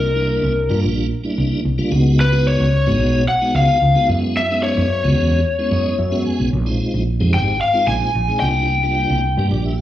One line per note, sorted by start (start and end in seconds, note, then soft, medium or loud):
0.00 0.39 C2 medium
0.00 0.79 A#4 medium
0.15 0.52 G3 medium
0.15 0.52 A#3 medium
0.15 0.53 D4 medium
0.15 0.53 E4 medium
0.43 0.68 C2 medium
0.69 0.85 G2 medium
0.69 1.06 G3 medium
0.69 1.07 A#3 medium
0.69 1.07 D4 medium
0.69 1.07 F4 medium
0.84 1.09 A#1 medium
1.24 1.61 G3 medium
1.24 1.61 A#3 medium
1.24 1.61 D4 medium
1.24 1.61 E4 medium
1.38 1.51 C2 medium
1.65 1.78 C2 medium
1.78 1.92 G3 medium
1.78 1.92 A#3 medium
1.78 1.92 D4 medium
1.78 1.92 F4 medium
1.91 2.56 C#2 medium
1.91 2.24 G#3 medium
1.91 2.24 B3 medium
1.91 2.24 D#4 medium
1.91 2.25 F#4 medium
2.21 2.48 B4 medium
2.32 2.69 G#3 medium
2.32 2.69 B3 medium
2.32 2.69 D#4 medium
2.32 2.69 F#4 medium
2.47 3.24 C#5 medium
2.60 2.85 C#2 medium
2.86 3.00 G#1 medium
2.86 3.23 G#3 medium
2.86 3.23 B3 medium
2.86 3.23 D#4 medium
2.86 3.24 F#4 medium
3.00 3.25 B1 medium
3.28 3.55 F#5 loud
3.41 3.78 G#3 medium
3.41 3.78 B3 medium
3.41 3.78 D#4 medium
3.41 3.78 F#4 medium
3.54 3.67 C#2 medium
3.54 4.06 F5 medium
3.82 3.95 C#2 medium
3.95 4.07 G#3 medium
3.95 4.08 B3 medium
3.95 4.09 D#4 medium
3.95 4.09 F#4 medium
4.09 4.73 F#2 medium
4.09 4.41 G#3 medium
4.09 4.42 B3 medium
4.09 4.42 C#4 medium
4.09 4.42 E4 medium
4.37 4.63 E5 medium
4.50 4.87 G#3 medium
4.50 4.87 B3 medium
4.50 4.87 C#4 medium
4.50 4.87 D#4 medium
4.63 6.22 C#5 medium
4.78 5.02 F#2 medium
5.04 5.17 C#2 medium
5.04 5.41 G#3 medium
5.04 5.41 B3 medium
5.04 5.41 C#4 medium
5.04 5.41 F#4 medium
5.17 5.42 E2 medium
5.58 5.95 G#3 medium
5.58 5.95 B3 medium
5.58 5.95 C#4 medium
5.58 5.95 E4 medium
5.71 5.84 F#2 medium
5.71 5.97 D#5 medium
5.98 6.24 F#2 medium
5.98 6.24 E5 medium
6.11 6.49 G#3 medium
6.11 6.49 B3 medium
6.11 6.49 C#4 medium
6.11 6.49 F#4 medium
6.25 6.51 G#5 medium
6.40 6.52 B1 medium
6.53 6.78 A#1 medium
6.66 7.03 G#3 medium
6.66 7.03 C4 medium
6.66 7.03 D#4 medium
6.66 7.03 F4 medium
6.94 7.19 A#1 medium
7.20 7.35 F2 medium
7.20 7.57 G#3 medium
7.20 7.57 C4 medium
7.20 7.57 D#4 medium
7.20 7.57 G4 medium
7.33 7.59 G#1 medium
7.33 7.59 G5 medium
7.61 7.86 F5 medium
7.73 8.11 G#3 medium
7.73 8.11 C4 medium
7.73 8.11 D#4 medium
7.73 8.11 F4 medium
7.87 8.00 A#1 medium
7.87 8.40 G#5 medium
8.15 8.28 A#1 medium
8.28 8.42 G#3 medium
8.28 8.42 C4 medium
8.28 8.42 D#4 medium
8.28 8.42 G#4 medium
8.40 9.06 C2 medium
8.40 8.75 G3 medium
8.40 8.75 A#3 medium
8.40 8.75 D4 medium
8.40 8.75 F4 medium
8.40 9.46 G5 medium
8.83 9.20 G3 medium
8.83 9.20 A#3 medium
8.83 9.20 D4 medium
8.83 9.21 F4 medium
9.10 9.35 C2 medium
9.37 9.52 G2 medium
9.37 9.74 G3 medium
9.37 9.75 A#3 medium
9.37 9.75 D4 medium
9.37 9.75 G4 medium
9.51 9.76 A#1 medium
9.51 9.64 D5 medium
9.65 9.77 E5 medium
9.78 9.81 F5 medium